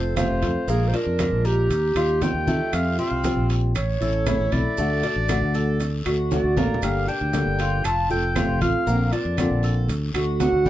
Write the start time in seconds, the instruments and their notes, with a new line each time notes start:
Already playing: fingered electric bass F1, nylon-string guitar A3 C4 F4, cuban tres A4, clarinet C5
0.16 nylon-string guitar C3 F3 A3 C4 F4, cuban tres F4, clarinet C5, high conga, high timbale, low timbale, short guiro, claves, maracas
0.30 fingered electric bass F1
0.42 fingered electric bass F2, nylon-string guitar A3 C4 F4, high conga, high timbale, short guiro, maracas
0.67 fingered electric bass A#1, nylon-string guitar F3 G#3 D4 F4, cuban tres A#3, clarinet G#4, high conga, long guiro, maracas
0.88 clarinet C5
0.94 nylon-string guitar G#3 D4 F4, cuban tres D4, clarinet A#4, high conga, high timbale, maracas
1.06 fingered electric bass F2
1.19 nylon-string guitar F3 G#3 D4 F4, high conga, high timbale, low timbale, short guiro, claves, maracas
1.32 fingered electric bass A#1
1.45 clarinet G4, cuban tres A#4, high conga, short guiro, maracas
1.70 fingered electric bass D#2, muted nylon-string guitar stroke, high conga, high timbale, long guiro, maracas
1.95 fingered electric bass D#2, nylon-string guitar G3 D#4 F4, cuban tres F4, high conga, high timbale, claves, maracas
2.21 nylon-string guitar D#3 G3 D#4 F4, clarinet G5, high conga, high timbale, low timbale, short guiro, maracas
2.34 fingered electric bass D#2
2.47 fingered electric bass D#3, nylon-string guitar G3 D#4 F4, cuban tres A3, high conga, short guiro, maracas
2.72 fingered electric bass F2, nylon-string guitar F3 G3 C4 F4, clarinet F5, high conga, high timbale, long guiro, claves, maracas
2.98 nylon-string guitar G3 C4 F4, cuban tres C4, clarinet F5, high conga, maracas
3.11 fingered electric bass C2
3.23 nylon-string guitar F3 G3 C4 F4, high conga, high timbale, low timbale, short guiro, maracas
3.37 fingered electric bass A#1
3.49 high timbale, short guiro, maracas
3.75 fingered electric bass A1, clarinet C#5, muted nylon-string guitar stroke, high conga, high timbale, long guiro, claves, maracas
4.01 fingered electric bass A1, nylon-string guitar A3 C#4 E4, cuban tres A4, high conga, maracas
4.26 nylon-string guitar E3 A3 C#4 E4, cuban tres E4, high conga, high timbale, low timbale, short guiro, claves, maracas
4.40 fingered electric bass A1
4.52 fingered electric bass B1, nylon-string guitar A3 C#4 E4, clarinet D5, high conga, high timbale, short guiro, maracas
4.77 fingered electric bass D2, nylon-string guitar D3 A3 D4 F#4, cuban tres A3, high conga, long guiro, maracas
5.03 nylon-string guitar A3 D4 F#4, cuban tres D4, high conga, high timbale, maracas
5.16 fingered electric bass A1
5.28 nylon-string guitar D3 A3 D4 F#4, high conga, high timbale, low timbale, short guiro, claves, maracas
5.42 fingered electric bass D2
5.54 cuban tres A4, high conga, short guiro, maracas
5.80 muted nylon-string guitar stroke, high conga, high timbale, long guiro, maracas
6.06 fingered electric bass D2, nylon-string guitar A3 D4 F#4, cuban tres F#4, high conga, high timbale, claves, maracas
6.31 nylon-string guitar D3 A3 D4 F#4, clarinet D5, high conga, high timbale, short guiro, maracas
6.44 fingered electric bass D2
6.57 fingered electric bass A1, nylon-string guitar A3 D4 F#4, cuban tres A#3, high conga, low timbale, short guiro, maracas
6.74 low conga
6.82 fingered electric bass G1, nylon-string guitar D3 G3 A#3 D4 G4, clarinet F5, high conga, high timbale, long guiro, claves, maracas
7.08 nylon-string guitar A#3 D4, cuban tres D4, clarinet G5, high conga, maracas
7.21 fingered electric bass D2
7.33 nylon-string guitar D3 G3 A#3 D4 G4, high conga, high timbale, low timbale, short guiro, maracas
7.46 fingered electric bass G1
7.59 cuban tres F4, high timbale, short guiro, maracas
7.84 fingered electric bass F1, clarinet A5, muted nylon-string guitar stroke, high conga, high timbale, long guiro, claves, maracas
8.10 fingered electric bass F1, nylon-string guitar A3 C4 F4, cuban tres A4, clarinet G5, high conga, maracas
8.35 nylon-string guitar C3 F3 A3 C4 F4, cuban tres F4, high conga, high timbale, low timbale, short guiro, claves, maracas
8.49 fingered electric bass F1
8.61 fingered electric bass A1, nylon-string guitar A3 C4 F4, clarinet F5, high conga, high timbale, short guiro, maracas
8.86 fingered electric bass A#1, nylon-string guitar D3 A#3 C4 F4, cuban tres A#3, high conga, long guiro, maracas
9.12 nylon-string guitar A#3 C4 F4, cuban tres D4, clarinet D5, high conga, high timbale, maracas
9.25 fingered electric bass F2
9.37 nylon-string guitar D3 A#3 C4 F4, high conga, high timbale, low timbale, short guiro, claves, maracas
9.50 fingered electric bass A#1
9.63 cuban tres A4, high conga, short guiro, maracas
9.88 fingered electric bass D2, muted nylon-string guitar stroke, high conga, high timbale, long guiro, maracas
10.14 fingered electric bass D2, nylon-string guitar A3 D4 F#4, cuban tres F#4, high conga, high timbale, claves, maracas
10.40 nylon-string guitar D3 A3 D4 F#4, clarinet F#5, high conga, high timbale, low timbale, short guiro, maracas
10.53 fingered electric bass D2
10.65 fingered electric bass A1, cuban tres G3, nylon-string guitar D4 F#4, high conga, short guiro, maracas